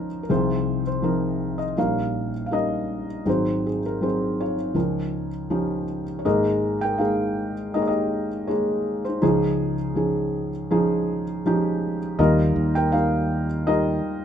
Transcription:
0.00 0.25 C#2 soft
0.00 0.25 C#3 soft
0.00 0.29 F3 medium
0.00 0.31 C#4 soft
0.00 0.30 D#4 soft
0.00 0.30 F4 soft
0.00 0.23 A#4 medium
0.00 0.31 C#5 medium
0.23 0.29 A#4 medium
0.29 1.74 C2 soft
0.29 1.74 C3 soft
0.29 0.82 F3 medium
0.29 0.82 C4 soft
0.29 0.83 D#4 soft
0.29 1.75 F4 medium
0.29 0.82 G#4 medium
0.29 0.86 C5 medium
0.87 1.62 C5 medium
1.02 1.56 F3 medium
1.02 1.57 C4 soft
1.02 1.57 D#4 soft
1.02 1.57 A#4 medium
1.58 1.76 D#5 medium
1.77 3.22 A#1 soft
1.77 3.22 A#2 soft
1.77 2.30 G3 medium
1.77 2.30 C#4 soft
1.77 2.31 D#4 soft
1.77 2.31 A#4 medium
1.77 3.23 C#5 medium
1.77 2.45 F5 medium
2.46 2.53 F5 soft
2.51 3.05 G3 medium
2.51 3.05 C#4 soft
2.51 3.05 D#4 soft
2.51 3.05 A#4 medium
2.51 3.23 D#5 medium
3.25 4.71 G#1 soft
3.25 4.71 G#2 soft
3.25 3.79 F#3 soft
3.25 3.79 C4 soft
3.25 3.80 D#4 soft
3.25 3.65 G#4 medium
3.25 3.66 C5 medium
3.30 4.73 F#4 soft
3.67 3.84 G#4 medium
3.86 4.03 A#4 medium
4.01 4.54 F#3 soft
4.01 4.54 C4 soft
4.01 4.55 D#4 soft
4.01 4.55 G#4 medium
4.01 4.40 C5 medium
4.41 5.85 F4 soft
4.41 5.84 C#5 medium
4.74 6.20 C#2 soft
4.74 6.20 C#3 soft
4.74 5.28 F3 medium
4.74 5.28 C#4 soft
4.74 5.28 D#4 soft
4.74 5.29 A#4 medium
5.50 6.03 F3 medium
5.50 6.03 C#4 medium
5.50 6.04 D#4 medium
5.50 6.04 G4 medium
6.19 6.25 C#5 soft
6.25 9.18 G#1 soft
6.25 9.18 G#2 soft
6.25 6.78 G#3 medium
6.25 6.78 A#3 medium
6.25 6.78 D#4 medium
6.25 6.78 G#4 medium
6.25 6.78 A#4 medium
6.25 6.82 D#5 medium
6.81 6.99 A#4 medium
6.81 7.00 G5 medium
6.98 7.52 G#3 soft
6.98 7.52 A#3 soft
6.98 7.52 D#4 soft
6.98 7.70 G#4 medium
6.98 7.53 A#4 medium
6.98 7.75 F5 medium
7.74 8.27 G#3 soft
7.74 8.27 A#3 soft
7.74 8.27 D#4 soft
7.74 7.82 G#4 medium
7.74 8.28 A#4 medium
7.74 7.81 D#5 medium
7.82 7.88 C#5 medium
7.87 8.45 G4 medium
7.87 8.49 D#5 medium
8.47 9.01 G#3 medium
8.47 9.01 A#3 soft
8.47 9.01 D#4 soft
8.47 9.01 G#4 medium
8.47 9.05 C#5 medium
9.05 9.21 C5 medium
9.09 9.20 D#4 soft
9.22 12.15 C#2 soft
9.22 12.15 C#3 soft
9.22 9.75 F3 medium
9.22 9.75 C#4 medium
9.22 9.75 D#4 medium
9.22 9.75 G#4 medium
9.22 11.41 C#5 medium
9.27 11.43 F4 soft
9.95 10.49 F3 medium
9.95 10.49 C#4 soft
9.95 10.49 D#4 soft
9.95 10.49 G#4 medium
10.71 11.23 F3 medium
10.71 11.24 C#4 medium
10.71 11.24 D#4 medium
10.71 11.24 G#4 medium
11.46 11.98 F3 medium
11.46 11.98 C#4 medium
11.46 11.98 D#4 medium
11.46 11.98 G4 medium
12.19 12.53 D#2 medium
12.19 14.25 D#2 soft
12.19 14.25 D#3 soft
12.19 12.72 G3 medium
12.19 12.72 D#4 medium
12.19 12.72 F4 medium
12.19 12.71 G4 medium
12.19 12.72 A#4 medium
12.19 12.76 D#5 medium
12.56 14.00 D#2 medium
12.75 12.92 A#4 medium
12.75 12.94 G5 medium
12.92 13.46 G3 medium
12.92 13.46 D#4 medium
12.92 13.46 F4 medium
12.92 13.46 A#4 medium
12.92 13.69 F5 medium
13.67 14.20 G3 medium
13.67 14.20 D#4 medium
13.67 14.21 F4 medium
13.67 14.25 G4 medium
13.67 14.21 A#4 medium
13.67 14.25 D#5 medium

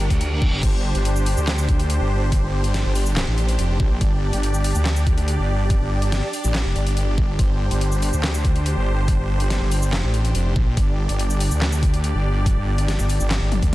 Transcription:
0.00 13.75 D4 medium
0.00 13.75 G4 medium
0.00 0.61 A#4 medium
0.00 reverse cymbal medium
0.10 0.51 D2 loud
0.10 kick medium
0.10 closed hi-hat medium
0.21 closed hi-hat medium
0.42 kick loud
0.53 0.61 G1 loud
0.63 0.93 G1 loud
0.63 4.00 C5 medium
0.63 kick loud
0.63 closed hi-hat medium
0.63 crash medium
0.95 1.35 G1 loud
0.95 closed hi-hat medium
1.05 closed hi-hat medium
1.16 shaker medium
1.26 open hi-hat medium
1.26 shaker soft
1.37 1.99 D2 medium
1.37 shaker medium
1.47 snare loud
1.47 clap medium
1.47 closed hi-hat medium
1.58 shaker medium
1.69 kick loud
1.69 closed hi-hat medium
1.79 closed hi-hat medium
1.90 closed hi-hat medium
2.01 2.41 G1 medium
2.32 kick loud
2.32 closed hi-hat medium
2.43 2.83 G1 medium
2.64 closed hi-hat medium
2.74 snare medium
2.74 closed hi-hat medium
2.85 3.26 G1 loud
2.95 open hi-hat medium
2.95 shaker soft
3.06 shaker medium
3.17 snare loud
3.17 clap medium
3.17 closed hi-hat medium
3.27 3.57 A1 loud
3.38 closed hi-hat medium
3.48 closed hi-hat medium
3.59 3.78 F1 loud
3.59 closed hi-hat medium
3.80 3.99 A#1 loud
3.80 kick loud
4.01 4.31 G1 loud
4.01 7.38 D5 medium
4.01 kick loud
4.01 closed hi-hat medium
4.33 4.73 G1 loud
4.33 closed hi-hat medium
4.43 closed hi-hat medium
4.54 shaker medium
4.64 open hi-hat medium
4.64 shaker medium
4.75 5.37 D2 loud
4.75 shaker medium
4.86 snare loud
4.86 clap medium
4.86 closed hi-hat medium
4.96 shaker medium
5.07 kick loud
5.07 closed hi-hat medium
5.18 closed hi-hat soft
5.28 closed hi-hat medium
5.39 5.79 G1 medium
5.70 kick loud
5.70 closed hi-hat medium
5.81 6.21 G1 loud
6.02 closed hi-hat medium
6.12 snare medium
6.12 closed hi-hat medium
6.33 open hi-hat medium
6.33 shaker medium
6.44 6.64 A1 loud
6.44 shaker medium
6.55 snare loud
6.55 clap medium
6.55 closed hi-hat medium
6.65 6.74 F1 medium
6.76 7.37 G1 loud
6.76 closed hi-hat medium
6.87 closed hi-hat soft
6.97 closed hi-hat medium
7.18 kick loud
7.39 7.69 G1 loud
7.39 10.76 C5 medium
7.39 kick loud
7.39 closed hi-hat medium
7.71 8.12 G1 loud
7.71 closed hi-hat medium
7.81 closed hi-hat medium
7.92 shaker medium
8.02 open hi-hat medium
8.02 shaker medium
8.13 8.75 D2 loud
8.13 shaker medium
8.24 snare loud
8.24 clap medium
8.24 closed hi-hat medium
8.34 shaker medium
8.45 kick loud
8.45 closed hi-hat medium
8.56 closed hi-hat soft
8.66 closed hi-hat medium
8.77 9.17 G1 loud
9.08 kick loud
9.08 closed hi-hat medium
9.19 9.59 G1 loud
9.40 closed hi-hat medium
9.50 snare medium
9.50 closed hi-hat medium
9.61 10.02 G1 loud
9.72 open hi-hat loud
9.72 shaker medium
9.82 shaker medium
9.93 snare loud
9.93 clap medium
9.93 closed hi-hat medium
10.03 10.33 A1 loud
10.14 closed hi-hat medium
10.25 closed hi-hat medium
10.35 10.54 F1 medium
10.35 closed hi-hat medium
10.56 10.75 A#1 medium
10.56 kick loud
10.77 11.07 G1 loud
10.77 13.75 D5 medium
10.77 kick loud
10.77 closed hi-hat medium
11.09 11.50 G1 loud
11.09 closed hi-hat medium
11.19 closed hi-hat medium
11.30 shaker medium
11.40 open hi-hat loud
11.40 shaker medium
11.51 12.13 D2 loud
11.51 shaker medium
11.62 snare loud
11.62 clap medium
11.62 closed hi-hat medium
11.72 shaker medium
11.83 kick loud
11.83 closed hi-hat medium
11.94 closed hi-hat medium
12.04 closed hi-hat medium
12.15 12.55 G1 loud
12.46 kick loud
12.46 closed hi-hat medium
12.57 12.97 G1 loud
12.78 closed hi-hat medium
12.88 snare medium
12.88 closed hi-hat medium
12.99 13.19 G1 loud
12.99 shaker medium
13.10 open hi-hat loud
13.10 shaker medium
13.20 13.40 G1 loud
13.20 shaker medium
13.31 snare loud
13.31 clap medium
13.31 closed hi-hat medium
13.41 13.61 G1 loud
13.52 closed hi-hat medium
13.52 high tom medium
13.63 13.75 D2 loud
13.63 kick medium
13.63 closed hi-hat medium

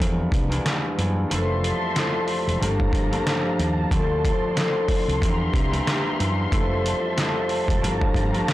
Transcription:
0.00 0.48 E2 medium
0.00 0.26 E2 loud
0.00 0.48 G3 medium
0.00 0.47 A#3 medium
0.00 0.47 D4 medium
0.00 0.47 E4 loud
0.00 kick medium
0.00 closed hi-hat loud
0.32 0.58 C2 medium
0.32 kick loud
0.32 closed hi-hat medium
0.49 0.96 E2 medium
0.49 0.97 G3 medium
0.49 0.94 A#3 medium
0.49 0.94 D4 medium
0.49 0.95 E4 loud
0.49 closed hi-hat medium
0.66 snare loud
0.66 closed hi-hat medium
0.97 1.35 E2 medium
0.97 1.24 F#2 medium
0.97 1.29 G3 medium
0.97 1.28 A#3 medium
0.97 1.29 D4 medium
0.97 1.29 E4 medium
0.97 closed hi-hat medium
1.30 1.71 F1 loud
1.30 1.94 F2 medium
1.30 2.59 F3 medium
1.30 1.94 G3 medium
1.30 1.91 A3 medium
1.30 1.91 C4 medium
1.30 1.92 E4 loud
1.30 2.59 E5 medium
1.30 2.59 A5 medium
1.30 2.59 C6 medium
1.30 closed hi-hat loud
1.64 closed hi-hat medium
1.95 2.66 F2 medium
1.95 2.66 G3 medium
1.95 2.60 A3 medium
1.95 2.61 C4 medium
1.95 2.61 E4 loud
1.95 snare loud
1.95 closed hi-hat loud
2.28 open hi-hat medium
2.47 2.58 E1 medium
2.47 closed hi-hat medium
2.60 2.87 G1 loud
2.60 3.10 G2 medium
2.60 3.10 F3 medium
2.60 3.07 A3 medium
2.60 3.08 A#3 medium
2.60 3.08 D4 loud
2.60 3.90 G4 medium
2.60 3.90 F5 medium
2.60 5.20 A5 medium
2.60 3.90 A#5 medium
2.60 closed hi-hat loud
2.80 kick medium
2.93 3.19 G1 medium
2.93 kick loud
2.93 closed hi-hat medium
3.11 3.96 G2 loud
3.11 3.90 F3 medium
3.11 3.91 A3 medium
3.11 3.98 A#3 medium
3.11 5.22 D4 loud
3.11 closed hi-hat soft
3.27 snare loud
3.27 closed hi-hat medium
3.59 3.85 D#2 medium
3.59 closed hi-hat medium
3.91 4.54 D2 medium
3.91 4.32 D2 loud
3.91 4.54 F3 medium
3.91 5.21 F3 medium
3.91 4.52 A3 medium
3.91 4.52 C4 medium
3.91 4.53 E4 loud
3.91 5.21 D5 medium
3.91 7.79 C6 medium
3.91 kick loud
3.91 closed hi-hat medium
4.25 kick loud
4.25 closed hi-hat medium
4.55 5.27 D2 medium
4.55 5.27 F3 medium
4.55 5.21 A3 medium
4.55 5.22 C4 medium
4.55 5.22 E4 loud
4.55 snare loud
4.55 closed hi-hat medium
4.88 kick medium
4.88 open hi-hat medium
5.08 5.19 C2 medium
5.08 closed hi-hat medium
5.21 5.70 E2 medium
5.21 5.48 E2 loud
5.21 5.70 G3 medium
5.21 5.69 A#3 medium
5.21 5.69 D4 medium
5.21 5.69 E4 loud
5.21 6.52 G4 medium
5.21 6.50 E5 medium
5.21 6.52 A#5 medium
5.21 kick medium
5.21 closed hi-hat loud
5.54 5.80 C2 medium
5.54 kick loud
5.54 closed hi-hat medium
5.71 6.18 E2 medium
5.71 6.18 G3 medium
5.71 6.16 A#3 medium
5.71 6.16 D4 medium
5.71 6.16 E4 loud
5.71 closed hi-hat soft
5.87 snare loud
5.87 closed hi-hat medium
6.19 6.57 E2 medium
6.19 6.46 F#2 medium
6.19 6.51 G3 medium
6.19 6.50 A#3 medium
6.19 6.50 D4 medium
6.19 6.51 E4 medium
6.19 closed hi-hat medium
6.51 6.93 F1 loud
6.51 7.15 F2 medium
6.51 7.81 F3 medium
6.51 7.16 G3 medium
6.51 7.13 A3 medium
6.51 7.13 C4 medium
6.51 7.13 E4 loud
6.51 7.81 E5 medium
6.51 8.53 A5 medium
6.51 kick loud
6.51 closed hi-hat medium
6.86 closed hi-hat medium
7.16 7.88 F2 medium
7.16 7.88 G3 medium
7.16 7.81 A3 medium
7.16 7.83 C4 medium
7.16 7.83 E4 loud
7.16 snare loud
7.16 closed hi-hat loud
7.49 open hi-hat medium
7.68 7.80 E1 medium
7.68 kick medium
7.68 closed hi-hat medium
7.81 8.09 G1 loud
7.81 8.32 G2 medium
7.81 8.32 F3 medium
7.81 8.29 A3 medium
7.81 8.29 A#3 medium
7.81 8.30 D4 loud
7.81 8.53 G4 medium
7.81 8.53 F5 medium
7.81 8.53 A#5 medium
7.81 closed hi-hat loud
8.01 kick medium
8.14 8.41 G1 medium
8.14 kick loud
8.14 closed hi-hat medium
8.33 8.53 G2 loud
8.33 8.53 F3 medium
8.33 8.53 A3 medium
8.33 8.53 A#3 medium
8.33 8.53 D4 loud
8.33 closed hi-hat soft
8.48 snare loud
8.48 closed hi-hat medium

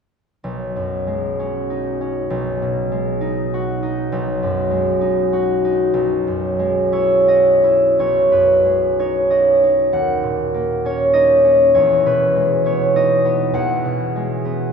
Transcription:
0.44 2.29 B1 medium
0.76 2.34 F#2 soft
1.07 2.91 G#3 soft
1.39 2.00 C#4 soft
1.70 3.20 D#4 soft
2.01 2.34 C#4 soft
2.30 4.11 B1 medium
2.62 4.14 B2 soft
2.92 4.70 G#3 soft
3.21 3.81 D#4 soft
3.54 5.32 F#4 medium
3.83 5.00 D#4 medium
4.12 5.92 B1 medium
4.43 5.98 F#2 soft
4.71 6.58 G#3 soft
5.01 5.63 D#4 soft
5.33 7.26 F#4 medium
5.65 5.98 D#4 medium
5.94 7.98 B1 medium
6.27 8.02 F#2 soft
6.59 8.64 G#3 soft
6.92 7.62 E4 soft
6.92 7.98 C#5 medium
7.27 9.30 F#4 soft
7.27 8.46 D#5 medium
7.63 8.01 E4 soft
7.99 9.94 B1 soft
7.99 8.56 C#5 medium
8.32 9.94 F#2 soft
8.32 9.93 B4 medium
8.65 9.93 G#3 soft
8.99 9.62 D#4 soft
8.99 9.52 C#5 medium
9.30 11.78 F#4 soft
9.30 11.12 D#5 medium
9.63 11.13 D#4 soft
9.93 11.78 D#2 medium
9.93 11.79 F#5 medium
10.23 11.78 A#2 soft
10.54 13.57 A#3 soft
10.85 11.43 C#4 soft
10.85 11.73 C#5 medium
11.13 12.95 D#4 soft
11.13 12.95 D#5 medium
11.44 11.77 C#4 soft
11.74 13.53 E2 medium
11.74 12.25 C#5 medium
12.05 13.57 B2 soft
12.05 14.72 B4 medium
12.35 14.15 G#3 soft
12.65 13.24 B3 soft
12.65 13.16 C#5 medium
12.96 14.72 D#4 soft
12.96 14.72 D#5 medium
13.25 14.44 B3 medium
13.54 14.72 E2 medium
13.54 14.72 F#5 medium
13.85 14.72 B2 soft
14.16 14.72 G#3 medium
14.45 14.72 B3 soft

